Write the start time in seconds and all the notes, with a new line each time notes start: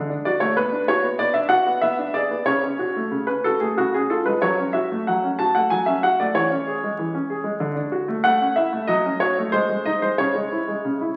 Already playing: D3
0.10 D4
0.25 F#4 D5
0.40 A3 C#5
0.57 B3 B4
0.72 D4
0.88 F#4 C#5
1.04 B3
1.19 B3 D5
1.34 D4 E5
1.49 F#4 F#5
1.66 B3
1.81 B3 E5
1.99 D4
2.14 G#4 D5
2.31 B3
2.46 C#3 C#5
2.63 C#4
2.79 F#4
2.96 A3
3.11 C#3
3.27 C#4 B4
3.44 F#4 A4
3.60 A3 G#4
3.78 C#3 F#4
3.94 C#4 G#4
4.10 F4 A4
4.26 G#3 B4
4.42 F#3 C#5
4.59 C#4
4.73 F#4 E5
4.92 A3
5.07 F#3 F#5
5.24 C#4
5.39 F#4 A5
5.55 A3 F#5
5.70 F#3 G#5
5.86 C#4 E5
6.03 F#4 F#5
6.20 A3 D5
6.35 E3 C#5
6.51 C#4
6.67 G#4
6.83 G#3
6.99 E3
7.15 C#4
7.30 G#4
7.44 G#3
7.60 D3
7.76 D4
7.92 F#4
8.08 A3
8.24 A3 F#5
8.41 C#4
8.56 E4 E5
8.73 A3
8.87 F#3 D#5
9.06 C#4
9.20 F#4 C#5
9.38 A3
9.52 G#3 C5
9.69 G#3
9.86 D#4 D#5
10.02 G#3 C5
10.18 C#3 C#5
10.34 G#3
10.52 E4
10.68 G#3
10.85 C#3
11.01 E4